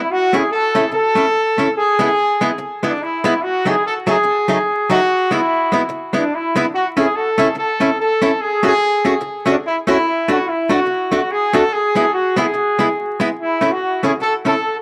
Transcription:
0.11 F#4
0.33 A3 C#4 E4 G#4
0.51 A4
0.75 A3 C#4 E4
0.91 A4, muted hollow-body jazz guitar stroke
1.15 A3 C#4 E4
1.58 A3 C#4 E4
1.77 G#4
1.99 G#3 B3 E4 G#4
2.41 G#3 B3 E4
2.58 muted hollow-body jazz guitar stroke
2.83 G#3 B3 D4 E4
3.01 E4
3.24 G#3 B3 E4
3.42 F#4
3.65 F#3 A3 D#4 G#4
3.85 A4
4.07 F#3 A3 D#4 G#4
4.23 muted hollow-body jazz guitar stroke
4.48 F#3 A3 D#4
4.90 F#3 A3 D#4 F#4
5.31 G#3 B3 E4
5.72 G#3 B3 E4
5.89 muted hollow-body jazz guitar stroke
6.13 G#3 B3 D4 E4
6.33 E4
6.56 G#3 B3 E4
6.74 F#4
6.97 A3 C#4 E4 G#4
7.15 A4
7.38 A3 C#4 E4
7.55 A4, muted hollow-body jazz guitar stroke
7.80 A3 C#4 E4
7.99 A4
8.22 A3 C#4 E4
8.40 G#4
8.63 A3 C#4 F#4 G#4
9.05 A3 C#4 F#4
9.21 muted hollow-body jazz guitar stroke
9.46 A3 C#4 D4 F#4
9.66 E4
9.87 A3 C#4 E4 F#4
10.28 A3 D4 F#4
10.48 E4
10.69 A3 D4 F#4
10.86 muted hollow-body jazz guitar stroke
11.12 A3 D4 F#4
11.30 G#4
11.53 A3 D4 F#4 A4
11.72 G#4
11.95 G#3 B3 E4
12.13 F#4
12.36 G#3 B3 E4 G#4
12.54 muted hollow-body jazz guitar stroke
12.79 G#3 B3 E4
13.20 G#3 B3 E4
13.38 E4
13.61 A3 C#4 E4
13.71 F#4
14.03 A3 C#4 E4 G#4
14.20 A4, muted hollow-body jazz guitar stroke
14.45 A3 C#4 E4 A4

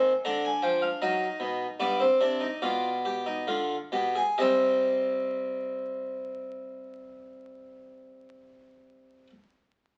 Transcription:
Already playing: D#3 C4 G#5
0.25 D3 D4 A#5
0.45 G#5
0.62 F3 G5
0.82 F5
1.02 F#3 D#4 D#5
1.40 B2
1.80 G2 B3 D5
2.00 C4
2.21 C3 D4
2.40 D#4
2.62 B2 F4 D5
3.05 G4
3.26 D#4
3.47 D3 F4
3.92 B2 G4
4.15 G#4
4.38 C3 G3 C4 G4 D#5

